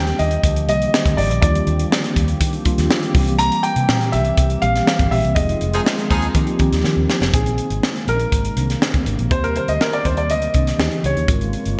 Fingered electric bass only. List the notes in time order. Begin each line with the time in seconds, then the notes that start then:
Already playing: D#2
0.19 D#2
0.43 D2
0.69 C2
1.06 D2
1.17 G#1
1.30 A#1
1.43 D#2
1.67 D#2
2.16 D#2
2.41 D#3
2.78 D#2
3.15 C2
3.76 C3
3.89 A#2
4.13 C2
4.38 C2
4.62 A#1
5.00 G1
5.12 A#1
5.24 C2
5.36 F1
5.62 F1
6.11 D#2
6.35 D#3
6.60 D#3
6.72 D#2
6.84 D#3
6.96 D#2
7.21 F1
7.34 A#1
7.70 G#1
8.08 A#1
8.32 G#1
8.57 C2
8.94 D2
9.06 G#1
9.19 A#1
9.31 D#2
9.68 D2
10.05 D#2
10.30 D2
10.55 C2
10.79 D#2
11.04 C#2
11.16 D#2
11.28 G#1
11.66 G1